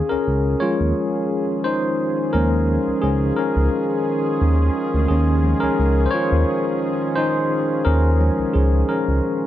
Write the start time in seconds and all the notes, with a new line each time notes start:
Already playing: D#3 C#4 F4 G#4
0.09 C#2 C#4 A#4
0.27 C#2
0.60 F3 G#3 C#4 F4 C#5
0.81 D#2
1.64 D#4 C5
2.33 D#2 F3 G#3 C#4 A#4
2.87 C#2
3.02 C#2 C#4 G#4
3.36 C#4 A#4
3.56 C#2
4.41 D#2
4.94 D2
5.08 D#2 C#4 G#4
5.44 F3 G#3 C#4
5.60 C#2 C#4 A#4
5.79 C#2
6.06 C5
6.11 F4 C#5
6.32 D#2
7.16 D#4 C5
7.85 D#2 C#4 A#4
8.19 F3 G#3 C#4
8.39 C#2
8.53 C#2 C#4 G#4
8.89 C#4 A#4
9.08 C#2